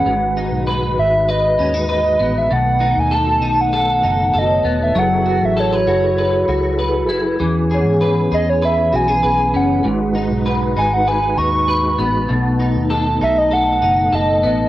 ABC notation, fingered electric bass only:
X:1
M:4/4
L:1/16
Q:1/4=98
K:G#phr
V:1 name="Fingered electric bass" clef=bass
G,,,3 B,,,3 G,,,4 D,,4 A,,,2 | B,,,3 D,,3 B,,,4 F,,,2 F,,,2 E,,,2 | F,,,3 A,,,3 F,,,4 C,,4 F,,,2 | E,,3 G,,3 E,,4 B,,,2 B,,,2 F,,,2 |
G,,,3 B,,,3 G,,,4 D,,4 A,,,2 | B,,,3 D,,3 B,,,4 F,,,2 F,,,2 A,,,2 |]